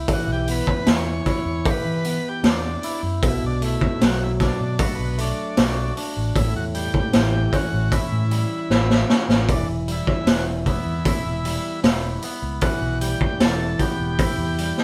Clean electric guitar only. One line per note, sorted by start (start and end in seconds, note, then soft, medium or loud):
0.00 0.48 B3 medium
0.00 1.25 E4 medium
0.00 1.27 G4 medium
0.08 0.86 E3 medium
0.49 2.04 B3 medium
0.87 2.83 E3 medium
1.26 2.83 E4 medium
1.66 2.43 G4 medium
2.05 3.23 B3 medium
2.45 3.23 G4 medium
2.84 3.23 E4 medium
3.23 5.19 B2 medium
3.62 5.17 A3 medium
4.02 5.97 F#3 medium
4.41 5.96 D4 medium
4.80 5.57 F#4 medium
5.18 6.36 A3 medium
5.58 6.36 F#4 medium
5.97 6.36 D4 medium
6.36 8.32 A2 medium
6.74 8.31 G3 medium
7.15 9.48 E3 medium
7.54 9.09 C#4 medium
7.93 8.71 E4 medium
8.32 9.88 G3 medium
8.71 11.06 E4 medium
9.10 9.49 C#4 medium
9.49 10.27 E3 medium
9.88 11.44 G3 medium
10.28 12.24 E3 medium
10.67 12.23 B3 medium
11.06 11.84 E4 medium
11.46 13.01 G3 medium
11.85 13.80 E4 medium
12.24 13.80 B3 medium
12.63 13.40 E3 medium
13.02 14.58 G3 medium
13.41 14.84 E3 medium
13.81 14.84 B3 medium
14.20 14.84 E4 medium
14.59 14.84 G3 medium